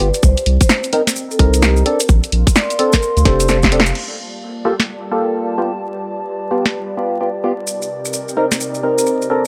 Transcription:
Already playing: ambient pad G4 D5 A5, vibraphone B4
0.00 sub bass G1, open hi-hat
0.14 open hi-hat, maracas
0.23 sub bass C2, ambient pad C4, vibraphone C5, kick, maracas
0.37 closed hi-hat, maracas
0.46 sub bass C2, open hi-hat
0.61 vibraphone C5, kick, closed hi-hat, maracas
0.69 snare, maracas
0.84 closed hi-hat, maracas
0.93 synth stab C4 D#4 A#4, open hi-hat
1.07 snare, closed hi-hat, maracas
1.16 maracas
1.31 vibraphone A4, maracas
1.39 sub bass C2, synth stab C4 D#4 A#4, kick, open hi-hat
1.54 closed hi-hat, maracas
1.62 vibraphone G4, snare, open hi-hat, maracas
1.77 maracas
1.86 synth stab C4 D4 A4, ambient pad A#4, vibraphone A#4, open hi-hat
1.97 ambient pad F5, closed hi-hat, maracas
2.09 sub bass A#1, kick, maracas
2.15 ambient pad C6
2.24 closed hi-hat, maracas
2.32 sub bass A#1, open hi-hat
2.47 kick, closed hi-hat, maracas
2.56 vibraphone D5, snare, maracas
2.70 closed hi-hat, maracas
2.79 synth stab C4 D4 A4, open hi-hat
2.92 vibraphone A#4, kick, snare, closed hi-hat, maracas
3.02 maracas
3.17 sub bass D2, closed hi-hat, maracas
3.25 sub bass F1, synth stab C4 D4 A4, vibraphone G4, kick, snare, open hi-hat
3.40 closed hi-hat, maracas
3.48 synth stab C4 D4 A4, snare, maracas
3.63 kick, snare, closed hi-hat, maracas
3.72 synth stab C4 D4 A4, open hi-hat
3.80 snare
3.86 open hi-hat, maracas
3.95 analog synth pad G3 A#3 F4 D5 A5, ambient pad G4, crash
4.22 ambient pad D5
4.53 ambient pad A5
4.65 synth stab A#3 F4 G4 A4
4.80 snare
5.11 synth stab A#3 F4 G4 A4
5.58 synth stab B3 F4 G4, analog synth pad B4
6.51 synth stab B3 F4 G4
6.65 snare
6.97 synth stab B3 F4 G4
7.21 synth stab B3 F4 G4
7.44 synth stab B3 F4 G4
7.67 analog synth pad C3 D#4 G4 A#4 D5, ambient pad C4, maracas
7.82 maracas
8.05 maracas
8.13 maracas
8.28 maracas
8.37 synth stab C4 D#4 A#4
8.51 snare, maracas
8.60 maracas
8.74 maracas
8.83 synth stab C4 D#4 A#4
8.98 maracas
9.06 maracas
9.22 maracas
9.30 ambient pad A#3, analog synth pad A#3 F4 A4 C5, synth stab C4 D4 A4 A#4

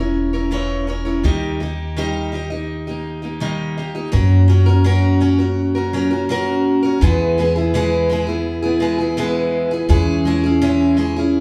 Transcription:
Already playing: upright bass E1, steel-string acoustic guitar C#5
0.00 steel-string acoustic guitar C#4 E4 A#4
0.33 steel-string acoustic guitar C#4 E4 A#4 C#5
0.51 steel-string acoustic guitar C#3 E3 C#4 E4 A#4 C#5
0.87 steel-string acoustic guitar C#4 E4 A#4 C#5
1.05 steel-string acoustic guitar C#4 E4 A#4 C#5
1.23 upright bass D#2, steel-string acoustic guitar D#3 G3 A#3 D#4 G4 D#5
1.60 steel-string acoustic guitar A#3 D#4 G4 D#5
1.96 steel-string acoustic guitar D#3 G3 A#3 D#4 G4 D#5
2.32 steel-string acoustic guitar A#3 D#4 G4 D#5
2.50 steel-string acoustic guitar A#3 D#4 G4 D#5
2.87 steel-string acoustic guitar A#3 D#4 G4 D#5
3.22 steel-string acoustic guitar A#3 D#4 G4 D#5
3.40 steel-string acoustic guitar D#3 G3 A#3 D#4 G4 D#5
3.78 steel-string acoustic guitar A#3 D#4 G4 D#5
3.95 steel-string acoustic guitar A#3 D#4 G4 D#5
4.12 upright bass F#2, steel-string acoustic guitar F#3 C#4 F#4 A#4, tonewheel organ A#3 C#4 F#4
4.48 steel-string acoustic guitar F#3 C#4 F#4 A#4
4.66 steel-string acoustic guitar C#4 F#4 A#4
4.84 steel-string acoustic guitar F#3 C#4 F#4 A#4
5.20 steel-string acoustic guitar F#3 C#4 F#4 A#4
5.39 steel-string acoustic guitar C#4 F#4 A#4
5.75 steel-string acoustic guitar C#4 F#4 A#4
5.93 steel-string acoustic guitar F#3 C#4 F#4 A#4
6.11 steel-string acoustic guitar C#4 F#4 A#4
6.29 steel-string acoustic guitar F#3 C#4 F#4 A#4
6.83 steel-string acoustic guitar C#4 F#4 A#4
7.01 upright bass E2, steel-string acoustic guitar E3 G#3 B3 E4 G#4, tonewheel organ E3 E4 G#4 B4
7.38 steel-string acoustic guitar G#3 B3 E4 G#4
7.56 steel-string acoustic guitar B3 E4 G#4
7.74 steel-string acoustic guitar E3 G#3 B3 E4 G#4
8.09 steel-string acoustic guitar G#3 B3 E4 G#4
8.27 steel-string acoustic guitar B3 E4 G#4
8.62 steel-string acoustic guitar B3 E4 G#4
8.80 steel-string acoustic guitar G#3 B3 E4 G#4
8.98 steel-string acoustic guitar B3 E4 G#4
9.17 steel-string acoustic guitar E3 G#3 B3 E4 G#4
9.71 steel-string acoustic guitar B3 E4 G#4
9.89 upright bass E2, steel-string acoustic guitar E3 G#3 C#4 E4 G#4, tonewheel organ G#3 C#4
10.25 steel-string acoustic guitar G#3 C#4 E4 G#4
10.44 steel-string acoustic guitar C#4 E4 G#4
10.61 steel-string acoustic guitar E3 G#3 C#4 E4 G#4
10.97 steel-string acoustic guitar G#3 C#4 E4 G#4
11.16 steel-string acoustic guitar C#4 E4 G#4

